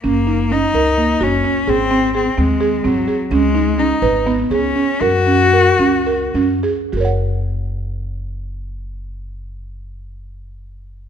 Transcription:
X:1
M:7/8
L:1/16
Q:1/4=119
K:F#
V:1 name="Marimba"
C2 D2 C2 A2 A,2 F2 C2 | G2 ^B,2 G2 B,2 G2 B,2 G2 | C2 D2 C2 B2 B,2 G2 C2 | A2 C2 A2 C2 A2 C2 G2 |
[FAcf]12- [FAcf]2- | [FAcf]12- [FAcf]2 |]
V:2 name="Cello"
A,4 D6 C4 | ^B,4 B,2 G,4 F,3 z | G,4 D4 z2 C4 | F8- F2 z4 |
z12 z2 | z12 z2 |]
V:3 name="Upright bass" clef=bass
F,,,6 C,,4 F,,,2 z2 | G,,,6 D,,4 G,,,2 z2 | C,,6 G,,,4 C,,2 z2 | F,,6 C,,4 F,,2 z2 |
F,,,12- F,,,2- | F,,,12- F,,,2 |]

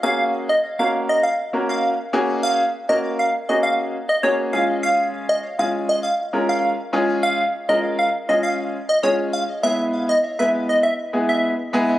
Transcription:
X:1
M:4/4
L:1/16
Q:1/4=100
K:Db
V:1 name="Digital synth lead"
f2 z e z f z e f z2 f2 z3 | f2 z e z f z e f z2 e d z f z | f2 z e z f z e f z2 f2 z3 | f2 z e z f z e f z2 e d z f z |
=e2 z _e z =e z _e =e z2 e2 z3 |]
V:2 name="Grand piano"
[B,DGA]3 z2 [B,DGB]3 z2 [B,DGB]2 z2 [B,DGA]2- | [B,DGA] z2 [B,DGB]2 z2 [B,DGA]3 z2 [B,DGA]2 [A,DFA]2- | [A,DFA]4 z [A,DFA]3 z2 [A,DFB]2 z2 [A,DFA]2- | [A,DFA] z2 [A,DFB]2 z2 [A,DFA]3 z2 [A,DFA]2 z2 |
[^G,=B,=E^G]3 z2 [G,B,E=B]3 z2 [G,B,EG]2 z2 [G,B,EG]2 |]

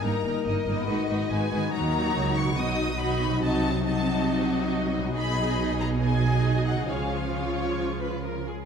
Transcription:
X:1
M:4/4
L:1/8
Q:1/4=140
K:Abdor
V:1 name="Violin section"
b2 e4 a2 | [K:C#mix] a3 c' d'2 b2 | =a2 a4 z2 | b3 a g3 f |
e6 z2 |]
V:2 name="Violin section"
[EB] [EB] [EB] [EB] [Gc] [Gc] [Gc] [Gc] | [K:C#mix] [Fc]4 [Fd]2 [Fd]2 | [_G_e]2 [Ge]6 | [Gd]4 [Gd]4 |
[Gc]2 c3 B A G |]
V:3 name="Harp"
[=G,,B,EB]4 [A,,CE_G]4 | [K:C#mix] [D,CDF]4 [B,,B,DF]4 | [=C,_G,_E_G]8 | [B,,G,DF]8 |
[C,G,CE]8 |]
V:4 name="Viola section"
[B,E] [B,E] [B,E] [B,E] [A,E] [A,E] [A,E] [A,E] | [K:C#mix] [F,D]4 [F,D]2 [F,D]2 | [_G,_E]2 [G,E]6 | [F,D]4 [F,D]4 |
[E,E]6- [E,E] z |]
V:5 name="Cello section" clef=bass
=G,, G,, G,, G,, A,, A,, A,, A,, | [K:C#mix] D,2 C,2 B,,4 | =C,8 | B,,8 |
C,6- C, z |]
V:6 name="Double bass section" clef=bass
=G,,, G,,, G,,, G,,, A,,, A,,, A,,, A,,, | [K:C#mix] D,,2 C,,2 B,,,4 | =C,,8 | B,,,8 |
C,,6- C,, z |]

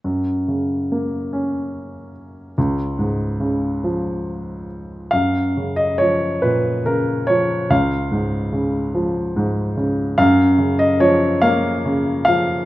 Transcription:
X:1
M:6/8
L:1/16
Q:3/8=48
K:F#
V:1 name="Grand piano"
z12 | z12 | e3 d c2 B2 A2 c2 | e8- e2 z2 |
e3 d c2 e4 e2 |]
V:2 name="Grand piano" clef=bass
F,,2 C,2 A,2 C6 | C,,2 G,,2 C,2 E,6 | F,,2 C,2 E,2 A,,2 C,2 E,2 | C,,2 G,,2 C,2 E,2 G,,2 C,2 |
F,,2 C,2 E,2 A,2 C,2 E,2 |]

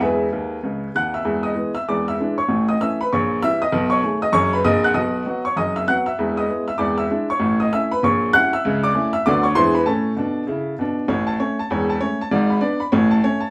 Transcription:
X:1
M:4/4
L:1/8
Q:"Swing" 1/4=195
K:E
V:1 name="Upright piano"
[GBe]6 [ff'] [ee']- | [ee'] [dd']2 [ee'] [=d=d'] [ee']2 [cc']- | [cc'] [dd'] [ee'] [Bb] [cc']2 [ee'] [dd']- | [dd'] [cc']2 [dd'] [cc'] [Bb] [dd'] [ff'] |
[dd']3 [cc'] [dd'] [ee'] [ff'] [ee']- | [ee'] [dd']2 [ee'] [=d=d'] [ee']2 [cc']- | [cc'] [dd'] [ee'] [Bb] [cc']2 [ff'] [ee']- | [K:A] [ee'] [dd']2 [ee'] [dd'] [cc'] [=c=c'] [Bb] |
[Aa]6- [Aa] z | c a c a c a c a | d b d b c a c a |]
V:2 name="Upright piano" clef=bass
[E,,,E,,]2 [D,,D,]2 [C,,C,]2 [D,,D,]2 | [E,,,E,,]2 [E,G,B,]2 [E,,,E,,]2 [E,G,=D]2 | [A,,,A,,]2 [E,A,C]2 [^A,,,^A,,]2 [E,=G,E]2 | [B,,,B,,]2 [D,A,G]2 [F,,,F,,]2 [^A,,,^A,,]2 |
[B,,,B,,]2 [F,B,F]2 [F,,,F,,]2 [F,B,F]2 | [E,,,E,,]2 [G,B,E]2 [E,,,E,,]2 [G,=DE]2 | [A,,,A,,]2 [A,CE]2 [^A,,,^A,,]2 [=G,CE]2 | [K:A] [C,,C,]2 [A,CE]2 [D,,D,F,B,F]2 [E,,E,G,DE]2 |
[A,,C]2 [B,,D]2 [C,E]2 [B,,D]2 | [A,,,A,,]2 [A,C]2 [E,,,E,,]2 [A,C]2 | [G,,,G,,]2 [B,D]2 [A,,,A,,]2 [A,C]2 |]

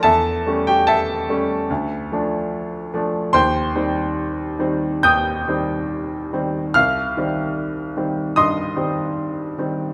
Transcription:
X:1
M:4/4
L:1/16
Q:1/4=73
K:Cdor
V:1 name="Grand piano"
[A=ea]3 [Gg] [Aea]12 | [cgc']8 [ge'g']8 | [ff']8 [ec'e']8 |]
V:2 name="Grand piano" clef=bass
=E,,2 [G,A,^C]4 [G,A,C]2 D,,2 [F,A,D]4 [F,A,D]2 | E,,2 [E,G,C]4 [E,G,C]2 E,,2 [E,G,C]4 [E,G,C]2 | C,,2 [E,G,C]4 [E,G,C]2 G,,2 [E,G,C]4 [E,G,C]2 |]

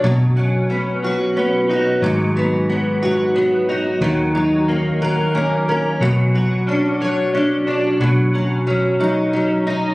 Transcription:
X:1
M:6/8
L:1/8
Q:3/8=60
K:Blyd
V:1 name="Steel-string acoustic guitar"
B,, C B, F B, F | G,, B, F, F F, F | D, D C A C A | B,, F =D c D c |
B,, C F, D F, D |]
V:2 name="Clean electric guitar" clef=bass
F, F, C F, C D | F, F, B, F, B, D | F, F, A, F, A, C | F, F, C F, C =D |
F, F, C F, C D |]
V:3 name="Fingered electric bass" clef=bass
B,,,6 | G,,,6 | D,,6 | B,,,6 |
B,,,6 |]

